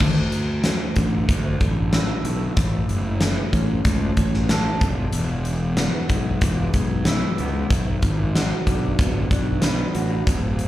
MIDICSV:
0, 0, Header, 1, 4, 480
1, 0, Start_track
1, 0, Tempo, 641711
1, 9, Time_signature, 4, 2, 24, 8
1, 7988, End_track
2, 0, Start_track
2, 0, Title_t, "Clean electric guitar"
2, 0, Program_c, 0, 27
2, 9, Note_on_c, 0, 38, 65
2, 484, Note_on_c, 0, 57, 62
2, 719, Note_on_c, 0, 50, 56
2, 957, Note_on_c, 0, 45, 62
2, 1193, Note_off_c, 0, 50, 0
2, 1202, Note_on_c, 0, 50, 59
2, 1203, Note_off_c, 0, 38, 0
2, 1438, Note_on_c, 0, 64, 64
2, 1675, Note_off_c, 0, 57, 0
2, 1684, Note_on_c, 0, 57, 54
2, 1908, Note_off_c, 0, 45, 0
2, 1917, Note_on_c, 0, 45, 66
2, 1921, Note_off_c, 0, 50, 0
2, 1922, Note_off_c, 0, 57, 0
2, 2404, Note_off_c, 0, 64, 0
2, 2404, Note_on_c, 0, 64, 57
2, 2643, Note_on_c, 0, 61, 60
2, 2889, Note_on_c, 0, 57, 62
2, 3118, Note_off_c, 0, 45, 0
2, 3122, Note_off_c, 0, 61, 0
2, 3131, Note_on_c, 0, 61, 61
2, 3369, Note_on_c, 0, 69, 68
2, 3601, Note_off_c, 0, 64, 0
2, 3604, Note_off_c, 0, 57, 0
2, 3604, Note_off_c, 0, 69, 0
2, 3605, Note_off_c, 0, 61, 0
2, 3608, Note_on_c, 0, 40, 60
2, 3830, Note_off_c, 0, 40, 0
2, 3839, Note_on_c, 0, 40, 69
2, 4326, Note_on_c, 0, 59, 61
2, 4565, Note_on_c, 0, 56, 62
2, 4808, Note_on_c, 0, 52, 64
2, 5037, Note_off_c, 0, 56, 0
2, 5040, Note_off_c, 0, 40, 0
2, 5046, Note_on_c, 0, 56, 64
2, 5283, Note_on_c, 0, 64, 66
2, 5524, Note_off_c, 0, 59, 0
2, 5538, Note_on_c, 0, 59, 57
2, 5762, Note_off_c, 0, 64, 0
2, 5764, Note_off_c, 0, 56, 0
2, 5765, Note_off_c, 0, 52, 0
2, 5767, Note_on_c, 0, 47, 65
2, 5770, Note_off_c, 0, 59, 0
2, 6257, Note_on_c, 0, 66, 62
2, 6493, Note_on_c, 0, 62, 61
2, 6736, Note_on_c, 0, 59, 60
2, 6965, Note_off_c, 0, 62, 0
2, 6966, Note_off_c, 0, 47, 0
2, 6974, Note_on_c, 0, 62, 59
2, 7206, Note_on_c, 0, 71, 65
2, 7434, Note_off_c, 0, 66, 0
2, 7443, Note_on_c, 0, 66, 53
2, 7684, Note_off_c, 0, 66, 0
2, 7686, Note_off_c, 0, 71, 0
2, 7686, Note_on_c, 0, 38, 64
2, 7690, Note_off_c, 0, 62, 0
2, 7691, Note_off_c, 0, 59, 0
2, 7988, Note_off_c, 0, 38, 0
2, 7988, End_track
3, 0, Start_track
3, 0, Title_t, "Fingered electric bass"
3, 0, Program_c, 1, 33
3, 7, Note_on_c, 1, 38, 80
3, 553, Note_off_c, 1, 38, 0
3, 722, Note_on_c, 1, 33, 76
3, 906, Note_off_c, 1, 33, 0
3, 962, Note_on_c, 1, 38, 82
3, 1145, Note_off_c, 1, 38, 0
3, 1201, Note_on_c, 1, 33, 83
3, 1566, Note_off_c, 1, 33, 0
3, 1673, Note_on_c, 1, 35, 85
3, 1859, Note_off_c, 1, 35, 0
3, 1922, Note_on_c, 1, 33, 79
3, 2104, Note_off_c, 1, 33, 0
3, 2159, Note_on_c, 1, 30, 82
3, 2525, Note_off_c, 1, 30, 0
3, 2645, Note_on_c, 1, 33, 86
3, 2826, Note_off_c, 1, 33, 0
3, 2882, Note_on_c, 1, 37, 81
3, 3064, Note_off_c, 1, 37, 0
3, 3116, Note_on_c, 1, 33, 86
3, 3483, Note_off_c, 1, 33, 0
3, 3601, Note_on_c, 1, 28, 76
3, 3784, Note_off_c, 1, 28, 0
3, 3838, Note_on_c, 1, 28, 83
3, 4387, Note_off_c, 1, 28, 0
3, 4562, Note_on_c, 1, 35, 82
3, 4744, Note_off_c, 1, 35, 0
3, 4798, Note_on_c, 1, 28, 84
3, 4981, Note_off_c, 1, 28, 0
3, 5038, Note_on_c, 1, 35, 88
3, 5405, Note_off_c, 1, 35, 0
3, 5531, Note_on_c, 1, 37, 87
3, 5710, Note_off_c, 1, 37, 0
3, 5762, Note_on_c, 1, 35, 81
3, 5945, Note_off_c, 1, 35, 0
3, 6005, Note_on_c, 1, 32, 79
3, 6370, Note_off_c, 1, 32, 0
3, 6488, Note_on_c, 1, 35, 80
3, 6669, Note_off_c, 1, 35, 0
3, 6724, Note_on_c, 1, 26, 78
3, 6907, Note_off_c, 1, 26, 0
3, 6966, Note_on_c, 1, 35, 85
3, 7331, Note_off_c, 1, 35, 0
3, 7442, Note_on_c, 1, 33, 76
3, 7626, Note_off_c, 1, 33, 0
3, 7683, Note_on_c, 1, 26, 77
3, 7988, Note_off_c, 1, 26, 0
3, 7988, End_track
4, 0, Start_track
4, 0, Title_t, "Drums"
4, 0, Note_on_c, 9, 49, 83
4, 4, Note_on_c, 9, 36, 93
4, 73, Note_off_c, 9, 49, 0
4, 79, Note_off_c, 9, 36, 0
4, 240, Note_on_c, 9, 42, 54
4, 315, Note_off_c, 9, 42, 0
4, 476, Note_on_c, 9, 42, 72
4, 477, Note_on_c, 9, 38, 94
4, 551, Note_off_c, 9, 38, 0
4, 551, Note_off_c, 9, 42, 0
4, 716, Note_on_c, 9, 42, 57
4, 722, Note_on_c, 9, 36, 72
4, 790, Note_off_c, 9, 42, 0
4, 797, Note_off_c, 9, 36, 0
4, 963, Note_on_c, 9, 36, 96
4, 964, Note_on_c, 9, 42, 71
4, 1038, Note_off_c, 9, 36, 0
4, 1039, Note_off_c, 9, 42, 0
4, 1201, Note_on_c, 9, 42, 50
4, 1203, Note_on_c, 9, 36, 76
4, 1276, Note_off_c, 9, 42, 0
4, 1278, Note_off_c, 9, 36, 0
4, 1441, Note_on_c, 9, 42, 67
4, 1442, Note_on_c, 9, 38, 97
4, 1516, Note_off_c, 9, 38, 0
4, 1516, Note_off_c, 9, 42, 0
4, 1681, Note_on_c, 9, 42, 52
4, 1756, Note_off_c, 9, 42, 0
4, 1920, Note_on_c, 9, 42, 64
4, 1922, Note_on_c, 9, 36, 95
4, 1995, Note_off_c, 9, 42, 0
4, 1997, Note_off_c, 9, 36, 0
4, 2163, Note_on_c, 9, 42, 55
4, 2237, Note_off_c, 9, 42, 0
4, 2397, Note_on_c, 9, 42, 71
4, 2398, Note_on_c, 9, 38, 97
4, 2472, Note_off_c, 9, 42, 0
4, 2473, Note_off_c, 9, 38, 0
4, 2641, Note_on_c, 9, 36, 70
4, 2641, Note_on_c, 9, 42, 59
4, 2716, Note_off_c, 9, 36, 0
4, 2716, Note_off_c, 9, 42, 0
4, 2878, Note_on_c, 9, 42, 75
4, 2880, Note_on_c, 9, 36, 92
4, 2953, Note_off_c, 9, 42, 0
4, 2955, Note_off_c, 9, 36, 0
4, 3118, Note_on_c, 9, 42, 57
4, 3121, Note_on_c, 9, 36, 70
4, 3193, Note_off_c, 9, 42, 0
4, 3196, Note_off_c, 9, 36, 0
4, 3247, Note_on_c, 9, 38, 29
4, 3322, Note_off_c, 9, 38, 0
4, 3360, Note_on_c, 9, 42, 79
4, 3361, Note_on_c, 9, 38, 95
4, 3435, Note_off_c, 9, 42, 0
4, 3436, Note_off_c, 9, 38, 0
4, 3600, Note_on_c, 9, 36, 89
4, 3601, Note_on_c, 9, 42, 55
4, 3675, Note_off_c, 9, 36, 0
4, 3676, Note_off_c, 9, 42, 0
4, 3834, Note_on_c, 9, 42, 76
4, 3908, Note_off_c, 9, 42, 0
4, 4076, Note_on_c, 9, 42, 59
4, 4151, Note_off_c, 9, 42, 0
4, 4315, Note_on_c, 9, 38, 98
4, 4315, Note_on_c, 9, 42, 75
4, 4389, Note_off_c, 9, 42, 0
4, 4390, Note_off_c, 9, 38, 0
4, 4557, Note_on_c, 9, 42, 60
4, 4560, Note_on_c, 9, 36, 72
4, 4632, Note_off_c, 9, 42, 0
4, 4635, Note_off_c, 9, 36, 0
4, 4797, Note_on_c, 9, 42, 73
4, 4800, Note_on_c, 9, 36, 94
4, 4872, Note_off_c, 9, 42, 0
4, 4875, Note_off_c, 9, 36, 0
4, 5038, Note_on_c, 9, 42, 52
4, 5040, Note_on_c, 9, 36, 71
4, 5113, Note_off_c, 9, 42, 0
4, 5115, Note_off_c, 9, 36, 0
4, 5275, Note_on_c, 9, 38, 103
4, 5275, Note_on_c, 9, 42, 73
4, 5349, Note_off_c, 9, 42, 0
4, 5350, Note_off_c, 9, 38, 0
4, 5522, Note_on_c, 9, 42, 50
4, 5597, Note_off_c, 9, 42, 0
4, 5763, Note_on_c, 9, 36, 94
4, 5765, Note_on_c, 9, 42, 70
4, 5838, Note_off_c, 9, 36, 0
4, 5839, Note_off_c, 9, 42, 0
4, 6002, Note_on_c, 9, 42, 54
4, 6004, Note_on_c, 9, 36, 73
4, 6077, Note_off_c, 9, 42, 0
4, 6079, Note_off_c, 9, 36, 0
4, 6249, Note_on_c, 9, 42, 69
4, 6250, Note_on_c, 9, 38, 95
4, 6324, Note_off_c, 9, 38, 0
4, 6324, Note_off_c, 9, 42, 0
4, 6485, Note_on_c, 9, 36, 70
4, 6486, Note_on_c, 9, 42, 55
4, 6559, Note_off_c, 9, 36, 0
4, 6561, Note_off_c, 9, 42, 0
4, 6723, Note_on_c, 9, 42, 71
4, 6724, Note_on_c, 9, 36, 98
4, 6798, Note_off_c, 9, 42, 0
4, 6799, Note_off_c, 9, 36, 0
4, 6963, Note_on_c, 9, 36, 75
4, 6965, Note_on_c, 9, 42, 55
4, 7038, Note_off_c, 9, 36, 0
4, 7039, Note_off_c, 9, 42, 0
4, 7194, Note_on_c, 9, 42, 79
4, 7195, Note_on_c, 9, 38, 93
4, 7269, Note_off_c, 9, 42, 0
4, 7270, Note_off_c, 9, 38, 0
4, 7440, Note_on_c, 9, 42, 55
4, 7515, Note_off_c, 9, 42, 0
4, 7681, Note_on_c, 9, 42, 77
4, 7682, Note_on_c, 9, 36, 92
4, 7756, Note_off_c, 9, 42, 0
4, 7757, Note_off_c, 9, 36, 0
4, 7920, Note_on_c, 9, 42, 56
4, 7988, Note_off_c, 9, 42, 0
4, 7988, End_track
0, 0, End_of_file